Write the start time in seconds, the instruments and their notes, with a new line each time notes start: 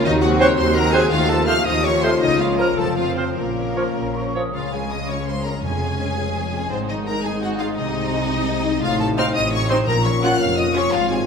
0.03 double bass section D#2, harp D#3, cello section D#3, french horn section C4 F#4, violin section D#4 D#5, clarinet D#4
0.21 viola section F#3 C4, harp C4, clarinet F#4, violin section F#4 F#5
0.40 bassoon C4, harp F#4, oboe C5, clarinet C#5, violin section C#5 C#6, flute section F#6
0.57 double bass section D#2, cello section D#3, harp C5, clarinet C5, violin section C5 C6
0.75 viola section F#3 C4, harp F#4, clarinet A#4, violin section A#4 A#5
0.93 bassoon C4, harp C4, clarinet G#4, violin section G#4 G#5, oboe C5, flute section F#6
1.10 double bass section D#2, cello section D#3, harp D#3, viola section F3 A3, french horn section A3 F4, clarinet F4, violin section F4 F5
1.28 viola section F3 A3, harp C4, clarinet A4, violin section A4 A5
1.47 bassoon A3, harp F4, oboe C5, clarinet F5, violin section F5 F6, flute section F6
1.65 double bass section D#2, cello section D#3, harp A4, clarinet D#5, violin section D#5 D#6
1.84 viola section F3 A3, harp F4, clarinet C#5, violin section C#5 C#6
2.02 bassoon A3, harp C4, clarinet C5, oboe C5, violin section C5 C6, flute section F6
2.21 double bass section C#2, cello section C#3, harp C#3, french horn section A#3, clarinet D#4, violin section D#4 D#5
2.40 viola section F3 A#3, harp C#4, clarinet F4, violin section F4 F5
2.58 bassoon F3, harp F4 A#4, clarinet A#4, oboe A#4, violin section A#4 A#5, flute section F6
2.76 double bass section F1, cello section F2, harp F3, viola section F3 C4, french horn section C4, clarinet A4, violin section A4 A5
2.96 viola section F3 C4, clarinet F4, harp F4, violin section F4 F5
3.16 bassoon F3, clarinet C4, violin section C4 C5, harp F4 C5, oboe C5, flute section F6
3.36 double bass section A#1, cello section A#2, harp A#2, violin section A#3 A#4, clarinet A#3, french horn section C#4 F4
3.57 viola section F3 C#4, harp C#4
3.76 bassoon F3, harp F4, oboe C#5, flute section F6
3.95 double bass section A#1, cello section A#2, harp A#4, flute section A#5
4.15 viola section F3 C#4, harp F4, flute section C#6
4.35 bassoon F3, harp C#4, oboe C#5, flute section D#6
4.54 double bass section C#2, harp C#3, cello section C#3, viola section G#3 C#4, violin section F4 F5
4.72 harp G#3, violin section G#4 G#5
4.91 french horn section G#3 C#4, harp C#4, violin section D#5 D#6
5.09 harp F4, violin section C#5 C#6
5.27 harp G#4, violin section C5 C6
5.44 french horn section G#3 C#4, harp F4, violin section A#4 A#5
5.63 double bass section F1, timpani F2, cello section F2, harp F2, violin section G#4 G#5
5.82 harp F3
5.99 french horn section G#3 C#4, harp C#4
6.18 harp F4
6.36 harp G#4
6.52 french horn section G#3 C#4, harp F4
6.70 double bass section G#1, harp G#2, cello section G#2, viola section G#3 D#4, violin section C4 C5
6.88 harp D#3, violin section D#4 D#5
7.06 french horn section G#3 D#4, harp G#3, violin section A#4 A#5
7.23 harp D#4, violin section G#4 G#5
7.42 violin section F#4 F#5, harp G#4
7.59 french horn section G#3 D#4, harp D#4, violin section F4 F5
7.76 double bass section C2, cello section C3, harp C3, violin section D#4 D#5
7.96 harp C4
8.13 french horn section G#3 D#4, harp G#3
8.31 harp D#4
8.49 harp G#4
8.65 french horn section G#3 D#4, harp D#4
8.82 double bass section A1, harp A2, cello section A2, french horn section C4 D#4, violin section F4 F5
9.00 harp A3, violin section A4 A5
9.17 viola section C4 D#4, harp C4, violin section F5 F6
9.35 double bass section A1, cello section A2, harp D#4, violin section D#5 D#6
9.52 harp F4, violin section C#5 C#6
9.69 viola section C4 D#4, harp D#4, violin section C5 C6
9.87 double bass section A#1, cello section A#2, timpani A#2, harp A#2, french horn section C#4 F4, violin section A#4 A#5
10.05 harp F3, violin section C#5 C#6
10.22 harp A#3, viola section C#4 F4, violin section F#5 F#6
10.40 double bass section F1, cello section F2, harp C#4, violin section F5 F6
10.57 harp F4, violin section D#5 D#6
10.75 viola section C#4 F4, harp C#4, violin section C#5 C#6
10.93 double bass section G#1, cello section G#2, harp G#2, french horn section C4, violin section F4 F5
11.11 harp C4, violin section G#4 G#5